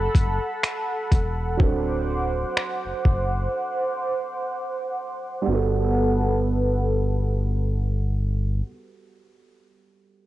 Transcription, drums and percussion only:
0.15 kick, closed hi-hat
0.63 finger snap, closed hi-hat
1.12 kick, closed hi-hat
1.60 kick
2.57 finger snap
3.05 kick

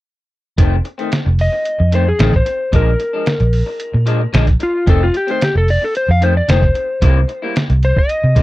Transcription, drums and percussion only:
0.58 kick, closed hi-hat
0.85 closed hi-hat
0.99 closed hi-hat
1.12 snare, closed hi-hat
1.39 open hi-hat
1.65 closed hi-hat
1.92 closed hi-hat
2.19 snare, closed hi-hat
2.33 kick
2.46 closed hi-hat
2.73 kick, closed hi-hat
3.00 closed hi-hat
3.26 snare, closed hi-hat
3.40 closed hi-hat
3.53 open hi-hat
3.80 closed hi-hat
4.07 closed hi-hat
4.34 snare, closed hi-hat
4.47 kick, closed hi-hat
4.60 closed hi-hat
4.87 kick, closed hi-hat
5.14 closed hi-hat
5.28 closed hi-hat
5.41 snare, closed hi-hat
5.68 open hi-hat
5.95 closed hi-hat
6.22 closed hi-hat
6.49 snare, closed hi-hat
6.62 kick
6.75 closed hi-hat
7.02 kick, closed hi-hat
7.29 closed hi-hat
7.56 snare, closed hi-hat
7.70 closed hi-hat
7.83 closed hi-hat
7.97 kick
8.09 closed hi-hat
8.36 kick, closed hi-hat

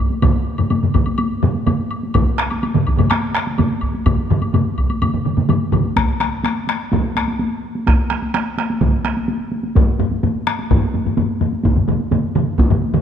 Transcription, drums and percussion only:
0.10 taiko high
0.22 taiko, taiko low-mid, taiko mid, taiko high, high woodblock
0.58 taiko low-mid, taiko mid, taiko high, high woodblock
0.70 taiko low-mid, taiko mid, taiko high, high woodblock
0.83 taiko low-mid, taiko mid
0.94 taiko, taiko low-mid, taiko mid, high woodblock
1.06 taiko high, high woodblock
1.18 taiko high, high woodblock
1.43 taiko low-mid, taiko mid
1.54 taiko high
1.66 taiko low-mid, taiko mid, taiko high, high woodblock
1.91 high woodblock
2.03 taiko high
2.14 taiko, taiko low-mid, taiko mid, taiko high, high woodblock
2.38 taiko rim
2.50 taiko high, high woodblock
2.63 taiko high, high woodblock
2.74 taiko low-mid, taiko mid
2.87 taiko, high woodblock
2.98 taiko low-mid, taiko mid, taiko high, high woodblock
3.10 taiko rim, taiko high, high woodblock
3.35 taiko rim
3.47 taiko high
3.58 taiko low-mid, taiko mid, taiko high, high woodblock
3.81 taiko, high woodblock
3.95 taiko high
4.06 taiko, taiko low-mid, taiko mid, taiko high, high woodblock
4.30 taiko low-mid, taiko mid
4.42 taiko high, high woodblock
4.54 taiko low-mid, taiko mid, taiko high, high woodblock
4.78 taiko, high woodblock
4.90 taiko high, high woodblock
5.02 taiko low-mid, taiko mid, taiko high, high woodblock
5.14 taiko low-mid, taiko mid
5.25 taiko low-mid, taiko mid, taiko high
5.37 taiko low-mid, taiko mid, taiko high
5.49 taiko low-mid, taiko mid, taiko high, high woodblock
5.72 taiko, taiko low-mid, taiko mid, high woodblock
5.85 taiko high
5.96 taiko rim, taiko, taiko high
6.20 taiko rim, taiko high
6.44 taiko rim, taiko high
6.67 taiko rim, taiko high
6.92 taiko, taiko low-mid, taiko high
7.15 taiko rim, taiko high
7.28 taiko high
7.39 taiko high
7.75 taiko high
7.87 taiko rim, taiko, taiko high
8.10 taiko rim, taiko high
8.22 taiko high
8.34 taiko rim, taiko high
8.58 taiko rim, taiko high
8.70 taiko high
8.81 taiko, taiko mid, taiko high
9.05 taiko rim, taiko high
9.17 taiko high
9.28 taiko high
9.52 taiko high
9.63 taiko high
9.75 taiko, taiko low-mid, taiko high
9.99 taiko low-mid, taiko high
10.11 taiko high
10.23 taiko low-mid, taiko high
10.47 taiko rim, taiko high
10.59 taiko high
10.71 taiko, taiko low-mid, taiko high
10.94 taiko low-mid, taiko high
11.05 taiko low-mid, taiko high
11.17 taiko low-mid, taiko high
11.41 taiko low-mid, taiko high
11.52 taiko high
11.63 taiko, taiko low-mid, taiko mid, taiko high
11.76 taiko low-mid, taiko mid
11.87 taiko low-mid, taiko mid, taiko high
12.00 taiko high
12.11 taiko low-mid, taiko mid, taiko high
12.35 taiko low-mid, taiko mid, taiko high
12.59 taiko, taiko high
12.70 taiko low-mid, taiko mid
12.82 taiko high
12.94 taiko low-mid, taiko mid, taiko high

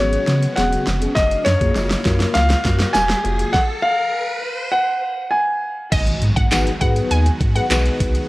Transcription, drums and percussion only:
0.13 closed hi-hat
0.28 snare, closed hi-hat
0.43 closed hi-hat
0.57 snare, closed hi-hat
0.72 closed hi-hat
0.87 snare, closed hi-hat
1.02 closed hi-hat
1.17 kick, snare, closed hi-hat
1.31 closed hi-hat
1.46 snare, closed hi-hat
1.61 kick, closed hi-hat
1.76 snare, closed hi-hat, tambourine
1.91 snare, closed hi-hat
2.05 kick, snare, closed hi-hat
2.20 snare, closed hi-hat
2.35 snare, closed hi-hat
2.50 snare, closed hi-hat
2.65 kick, snare, closed hi-hat
2.80 snare, closed hi-hat
2.95 snare, closed hi-hat, tambourine
3.10 snare, closed hi-hat
3.25 closed hi-hat
3.39 closed hi-hat
3.54 kick, snare
5.92 kick, closed hi-hat, crash
6.07 closed hi-hat
6.22 closed hi-hat
6.37 kick, closed hi-hat
6.51 snare, clap, closed hi-hat, tambourine
6.67 closed hi-hat
6.81 kick, closed hi-hat
6.96 closed hi-hat
7.11 closed hi-hat
7.26 closed hi-hat
7.41 kick, closed hi-hat
7.56 closed hi-hat
7.70 snare, clap, closed hi-hat, tambourine
7.85 closed hi-hat
8.00 kick, closed hi-hat
8.15 closed hi-hat

